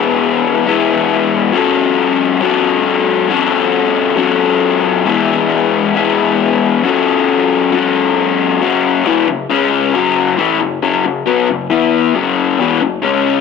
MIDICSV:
0, 0, Header, 1, 2, 480
1, 0, Start_track
1, 0, Key_signature, 3, "minor"
1, 0, Tempo, 441826
1, 1676, Time_signature, 4, 2, 24, 8
1, 14564, End_track
2, 0, Start_track
2, 0, Title_t, "Overdriven electric guitar"
2, 0, Program_c, 0, 29
2, 0, Note_on_c, 0, 52, 91
2, 0, Note_on_c, 0, 56, 96
2, 0, Note_on_c, 0, 59, 106
2, 0, Note_on_c, 0, 64, 94
2, 0, Note_on_c, 0, 68, 94
2, 690, Note_off_c, 0, 52, 0
2, 697, Note_off_c, 0, 56, 0
2, 703, Note_on_c, 0, 52, 70
2, 709, Note_off_c, 0, 59, 0
2, 710, Note_on_c, 0, 56, 77
2, 715, Note_off_c, 0, 64, 0
2, 715, Note_off_c, 0, 68, 0
2, 721, Note_on_c, 0, 59, 81
2, 731, Note_on_c, 0, 64, 85
2, 742, Note_on_c, 0, 68, 83
2, 1655, Note_off_c, 0, 52, 0
2, 1659, Note_off_c, 0, 56, 0
2, 1663, Note_on_c, 0, 54, 94
2, 1664, Note_off_c, 0, 59, 0
2, 1669, Note_off_c, 0, 64, 0
2, 1674, Note_off_c, 0, 68, 0
2, 1678, Note_on_c, 0, 61, 95
2, 1688, Note_on_c, 0, 66, 90
2, 1701, Note_on_c, 0, 69, 96
2, 2610, Note_off_c, 0, 54, 0
2, 2615, Note_on_c, 0, 54, 77
2, 2630, Note_off_c, 0, 61, 0
2, 2634, Note_off_c, 0, 66, 0
2, 2634, Note_on_c, 0, 61, 75
2, 2638, Note_on_c, 0, 66, 86
2, 2645, Note_off_c, 0, 69, 0
2, 2649, Note_on_c, 0, 69, 89
2, 3562, Note_off_c, 0, 54, 0
2, 3575, Note_on_c, 0, 54, 100
2, 3576, Note_off_c, 0, 61, 0
2, 3579, Note_off_c, 0, 66, 0
2, 3587, Note_off_c, 0, 69, 0
2, 3589, Note_on_c, 0, 61, 98
2, 3592, Note_on_c, 0, 66, 102
2, 3608, Note_on_c, 0, 69, 103
2, 4515, Note_off_c, 0, 54, 0
2, 4528, Note_on_c, 0, 54, 79
2, 4531, Note_off_c, 0, 61, 0
2, 4537, Note_off_c, 0, 66, 0
2, 4545, Note_on_c, 0, 61, 78
2, 4546, Note_off_c, 0, 69, 0
2, 4554, Note_on_c, 0, 66, 84
2, 4567, Note_on_c, 0, 69, 90
2, 5485, Note_off_c, 0, 54, 0
2, 5493, Note_off_c, 0, 61, 0
2, 5495, Note_on_c, 0, 52, 95
2, 5498, Note_off_c, 0, 66, 0
2, 5505, Note_off_c, 0, 69, 0
2, 5506, Note_on_c, 0, 56, 105
2, 5509, Note_on_c, 0, 59, 97
2, 5522, Note_on_c, 0, 64, 94
2, 5535, Note_on_c, 0, 68, 96
2, 6448, Note_off_c, 0, 52, 0
2, 6453, Note_off_c, 0, 56, 0
2, 6455, Note_off_c, 0, 59, 0
2, 6461, Note_off_c, 0, 64, 0
2, 6463, Note_on_c, 0, 52, 75
2, 6468, Note_off_c, 0, 68, 0
2, 6469, Note_on_c, 0, 56, 87
2, 6474, Note_on_c, 0, 59, 87
2, 6487, Note_on_c, 0, 64, 81
2, 6488, Note_on_c, 0, 68, 95
2, 7411, Note_off_c, 0, 52, 0
2, 7414, Note_off_c, 0, 56, 0
2, 7417, Note_off_c, 0, 59, 0
2, 7423, Note_off_c, 0, 64, 0
2, 7424, Note_off_c, 0, 68, 0
2, 7430, Note_on_c, 0, 54, 91
2, 7438, Note_on_c, 0, 61, 104
2, 7453, Note_on_c, 0, 66, 101
2, 7461, Note_on_c, 0, 69, 100
2, 8375, Note_off_c, 0, 54, 0
2, 8379, Note_off_c, 0, 61, 0
2, 8386, Note_off_c, 0, 66, 0
2, 8390, Note_off_c, 0, 69, 0
2, 8390, Note_on_c, 0, 54, 75
2, 8400, Note_on_c, 0, 61, 75
2, 8419, Note_on_c, 0, 66, 86
2, 8425, Note_on_c, 0, 69, 87
2, 9335, Note_off_c, 0, 54, 0
2, 9340, Note_off_c, 0, 61, 0
2, 9350, Note_off_c, 0, 66, 0
2, 9352, Note_off_c, 0, 69, 0
2, 9354, Note_on_c, 0, 42, 94
2, 9363, Note_on_c, 0, 49, 101
2, 9368, Note_on_c, 0, 54, 106
2, 9824, Note_off_c, 0, 42, 0
2, 9829, Note_off_c, 0, 49, 0
2, 9831, Note_off_c, 0, 54, 0
2, 9832, Note_on_c, 0, 40, 93
2, 9843, Note_on_c, 0, 47, 90
2, 9849, Note_on_c, 0, 52, 93
2, 10063, Note_off_c, 0, 40, 0
2, 10069, Note_off_c, 0, 47, 0
2, 10072, Note_off_c, 0, 52, 0
2, 10079, Note_on_c, 0, 42, 64
2, 10083, Note_on_c, 0, 49, 72
2, 10266, Note_off_c, 0, 42, 0
2, 10268, Note_off_c, 0, 49, 0
2, 10316, Note_on_c, 0, 49, 96
2, 10321, Note_on_c, 0, 56, 98
2, 10327, Note_on_c, 0, 61, 112
2, 10786, Note_off_c, 0, 49, 0
2, 10788, Note_off_c, 0, 56, 0
2, 10791, Note_off_c, 0, 61, 0
2, 10798, Note_on_c, 0, 42, 89
2, 10806, Note_on_c, 0, 49, 98
2, 10811, Note_on_c, 0, 54, 116
2, 11267, Note_off_c, 0, 42, 0
2, 11268, Note_off_c, 0, 49, 0
2, 11273, Note_off_c, 0, 54, 0
2, 11273, Note_on_c, 0, 45, 102
2, 11280, Note_on_c, 0, 52, 99
2, 11285, Note_on_c, 0, 57, 95
2, 11504, Note_off_c, 0, 45, 0
2, 11508, Note_off_c, 0, 52, 0
2, 11511, Note_off_c, 0, 57, 0
2, 11524, Note_on_c, 0, 42, 67
2, 11525, Note_on_c, 0, 49, 76
2, 11709, Note_off_c, 0, 42, 0
2, 11710, Note_off_c, 0, 49, 0
2, 11759, Note_on_c, 0, 42, 89
2, 11759, Note_on_c, 0, 49, 94
2, 11765, Note_on_c, 0, 54, 104
2, 11987, Note_off_c, 0, 49, 0
2, 11988, Note_off_c, 0, 42, 0
2, 11991, Note_off_c, 0, 54, 0
2, 12005, Note_on_c, 0, 42, 68
2, 12011, Note_on_c, 0, 49, 75
2, 12190, Note_off_c, 0, 42, 0
2, 12193, Note_off_c, 0, 49, 0
2, 12231, Note_on_c, 0, 47, 101
2, 12243, Note_on_c, 0, 54, 99
2, 12244, Note_on_c, 0, 59, 99
2, 12464, Note_off_c, 0, 47, 0
2, 12470, Note_off_c, 0, 54, 0
2, 12470, Note_off_c, 0, 59, 0
2, 12484, Note_on_c, 0, 42, 66
2, 12488, Note_on_c, 0, 49, 75
2, 12670, Note_off_c, 0, 42, 0
2, 12672, Note_off_c, 0, 49, 0
2, 12710, Note_on_c, 0, 52, 87
2, 12724, Note_on_c, 0, 59, 94
2, 12727, Note_on_c, 0, 64, 100
2, 13184, Note_off_c, 0, 52, 0
2, 13191, Note_off_c, 0, 59, 0
2, 13191, Note_on_c, 0, 42, 98
2, 13193, Note_off_c, 0, 64, 0
2, 13201, Note_on_c, 0, 49, 96
2, 13207, Note_on_c, 0, 54, 104
2, 13665, Note_off_c, 0, 42, 0
2, 13670, Note_off_c, 0, 49, 0
2, 13673, Note_off_c, 0, 54, 0
2, 13682, Note_on_c, 0, 40, 91
2, 13695, Note_on_c, 0, 47, 90
2, 13695, Note_on_c, 0, 52, 102
2, 13911, Note_off_c, 0, 40, 0
2, 13917, Note_off_c, 0, 47, 0
2, 13917, Note_off_c, 0, 52, 0
2, 13921, Note_on_c, 0, 42, 70
2, 13929, Note_on_c, 0, 49, 73
2, 14110, Note_off_c, 0, 42, 0
2, 14114, Note_off_c, 0, 49, 0
2, 14146, Note_on_c, 0, 49, 89
2, 14161, Note_on_c, 0, 56, 96
2, 14163, Note_on_c, 0, 61, 99
2, 14564, Note_off_c, 0, 49, 0
2, 14564, Note_off_c, 0, 56, 0
2, 14564, Note_off_c, 0, 61, 0
2, 14564, End_track
0, 0, End_of_file